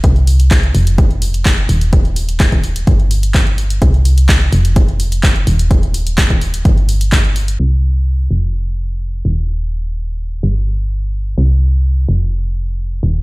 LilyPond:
<<
  \new Staff \with { instrumentName = "FM bass" } { \clef bass \time 4/4 \key ees \major \tempo 4 = 127 c,4. f,,2 ees,,8~ | ees,,2 g,,2 | c,4. f,,2 ees,,8~ | ees,,2 g,,2 |
c,4. f,,2 ees,,8~ | ees,,2 g,,2 | c,4. f,,2 ees,,8 | }
  \new DrumStaff \with { instrumentName = "Drums" } \drummode { \time 4/4 <hh bd>16 hh16 hho16 hh16 <hc hh bd>16 hh16 hho16 hh16 <hh bd>16 hh16 hho16 hh16 <hc hh bd>16 hh16 hho16 hh16 | <hh bd>16 hh16 hho16 hh16 <hc hh bd>16 <hh bd>16 hho16 hh16 <hh bd>16 hh16 hho16 hh16 <hc hh bd>16 hh16 hho16 hh16 | <hh bd>16 hh16 hho16 hh16 <hc hh bd>16 hh16 hho16 hh16 <hh bd>16 hh16 hho16 hh16 <hc hh bd>16 hh16 hho16 hh16 | <hh bd>16 hh16 hho16 hh16 <hc hh bd>16 <hh bd>16 hho16 hh16 <hh bd>16 hh16 hho16 hh16 <hc hh bd>16 hh16 hho16 hh16 |
cymc4 r4 r4 r4 | r4 r4 r4 r4 | r4 r4 r4 r4 | }
>>